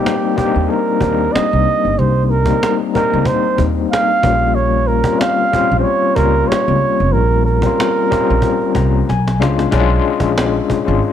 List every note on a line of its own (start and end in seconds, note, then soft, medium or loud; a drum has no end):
0.00 0.35 G3 medium
0.00 0.36 A#3 medium
0.00 0.37 C4 medium
0.00 0.45 D#4 medium
0.00 0.37 G4 medium
0.06 cajon slap loud
0.24 cajon slap soft
0.35 0.92 G3 medium
0.35 0.92 A#3 medium
0.35 0.93 C4 medium
0.35 0.45 D4 medium
0.35 0.71 G4 medium
0.35 muted upright bass stroke soft
0.35 cajon bass medium
0.45 0.96 D#4 medium
0.55 0.67 D#2 medium
0.55 cajon slap soft
0.70 1.34 A#4 medium
0.70 cajon slap soft
0.88 cajon slap soft
1.01 1.27 D#2 medium
1.01 2.11 G3 medium
1.01 2.12 A#3 medium
1.01 2.12 C4 medium
1.01 1.09 D4 medium
1.01 cajon bass medium
1.10 2.16 D#4 medium
1.21 cajon slap soft
1.33 2.00 D#5 loud
1.33 muted upright bass stroke soft
1.33 cajon slap loud
1.53 1.64 C2 medium
1.53 cajon slap soft
1.85 1.96 G1 medium
1.85 cajon slap soft
1.99 2.49 C2 medium
1.99 2.26 C5 medium
1.99 cajon slap soft
2.16 cajon slap soft
2.26 2.77 A#4 medium
2.26 2.31 C5 medium
2.31 cajon slap soft
2.46 2.88 G3 medium
2.46 2.88 A#3 medium
2.46 2.89 C4 medium
2.46 cajon bass medium
2.51 2.89 D#4 medium
2.63 cajon slap loud
2.81 cajon slap soft
2.94 4.05 G3 medium
2.94 4.05 A#3 medium
2.94 4.06 C4 medium
2.94 4.07 D#4 medium
2.94 3.28 A#4 medium
2.94 muted upright bass stroke soft
2.94 cajon bass medium
3.12 3.25 C#2 medium
3.12 cajon slap soft
3.25 3.65 C5 medium
3.25 cajon bass loud
3.45 cajon slap soft
3.58 3.85 D#2 medium
3.58 cajon bass medium
3.78 cajon slap soft
3.91 4.56 F5 loud
3.91 cajon slap loud
4.10 cajon slap soft
4.23 5.00 A#1 medium
4.23 4.92 G3 medium
4.23 4.93 A#3 medium
4.23 4.93 C#4 medium
4.23 4.94 F4 medium
4.23 cajon bass loud
4.42 cajon slap soft
4.55 4.89 C#5 medium
4.55 cajon slap soft
4.74 cajon slap soft
4.88 5.21 A#4 medium
4.88 cajon slap soft
5.04 5.46 G3 medium
5.04 5.46 C4 medium
5.04 5.47 C#4 medium
5.04 5.47 F4 medium
5.04 cajon bass medium
5.20 5.78 F5 medium
5.20 cajon slap loud
5.39 cajon slap soft
5.52 6.08 G3 medium
5.52 6.08 C4 medium
5.52 6.09 C#4 medium
5.52 6.09 F4 medium
5.52 muted upright bass stroke soft
5.52 cajon bass medium
5.70 5.83 A#1 medium
5.70 cajon slap soft
5.79 5.84 C5 medium
5.79 6.17 C#5 loud
5.85 cajon slap soft
6.03 cajon slap soft
6.16 6.43 C#2 medium
6.16 7.27 G3 medium
6.16 7.27 A#3 medium
6.16 7.28 C#4 medium
6.16 7.28 F4 medium
6.16 6.49 A#4 medium
6.16 cajon bass medium
6.48 7.14 C#5 medium
6.48 muted upright bass stroke soft
6.52 cajon slap loud
6.68 6.79 C#2 medium
6.68 cajon slap soft
7.00 7.16 F1 medium
7.00 cajon slap soft
7.12 7.66 A#1 loud
7.12 7.45 A#4 medium
7.12 cajon slap soft
7.32 cajon slap soft
7.45 9.35 A#4 medium
7.45 cajon slap soft
7.62 8.04 G3 medium
7.62 8.05 C4 medium
7.62 8.05 C#4 medium
7.62 cajon bass medium
7.66 8.05 F4 medium
7.80 cajon slap loud
7.98 cajon slap soft
8.10 9.07 G3 medium
8.10 9.08 C4 medium
8.10 9.08 C#4 medium
8.10 9.09 F4 medium
8.10 muted upright bass stroke soft
8.10 cajon bass medium
8.10 cajon slap soft
8.29 8.41 A#1 medium
8.29 cajon slap soft
8.42 cajon bass medium
8.62 cajon slap soft
8.75 9.01 C2 medium
8.75 9.06 A#5 medium
8.75 cajon bass medium
8.95 cajon slap soft
9.09 9.42 B1 medium
9.09 9.39 G#5 medium
9.09 cajon slap soft
9.09 cajon slap medium
9.28 cajon slap medium
9.40 9.67 C#2 medium
9.40 9.68 G#3 medium
9.40 9.68 C#4 medium
9.40 9.69 D4 medium
9.40 9.69 F4 medium
9.40 9.71 F5 medium
9.40 cajon slap medium
9.59 cajon slap medium
9.71 9.98 B1 loud
9.71 10.67 G#3 loud
9.71 10.68 C#4 loud
9.71 10.68 D4 loud
9.71 9.80 E4 medium
9.71 cajon bass loud
9.81 10.72 F4 loud
9.90 cajon slap soft
10.05 cajon slap soft
10.20 10.58 A#1 medium
10.20 cajon bass medium
10.38 cajon slap loud
10.38 cajon slap medium
10.56 cajon slap soft
10.70 muted upright bass stroke soft
10.70 cajon bass medium
10.85 10.99 G#1 medium
10.85 11.13 G#3 medium
10.85 11.13 C#4 medium
10.85 11.13 D4 medium
10.85 11.13 F4 medium
10.85 cajon slap soft
11.02 cajon slap soft